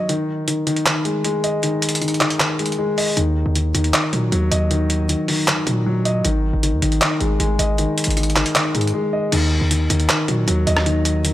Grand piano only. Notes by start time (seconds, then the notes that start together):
Already playing: D#3 F#3 D#5
0.09 D#3
0.48 D#3
0.67 D#3
0.86 D#3
1.05 G#3
1.25 G#3
1.44 D#5
1.63 D#3
2.01 D#3
2.21 D#3
2.40 D#3
2.59 G#3
2.78 G#3
2.98 D#5
3.17 D#3
3.55 D#3
3.75 D#3
3.94 D#3
4.13 F#3
4.32 F#3
4.51 D#5
4.71 D#3
5.09 D#3
5.28 D#3
5.48 D#3
5.67 F#3
5.86 F#3
6.05 D#5
6.25 D#3
6.63 D#3
6.82 D#3
7.01 D#3
7.20 G#3
7.40 G#3
7.59 D#5
7.79 D#3
8.17 D#3
8.36 D#3
8.55 D#3
8.75 G#3
8.94 G#3
9.13 D#5
9.32 D#3
9.71 D#3
9.90 D#3
10.09 D#3
10.29 F#3
10.47 F#3
10.67 D#5
10.86 D#3
11.24 D#3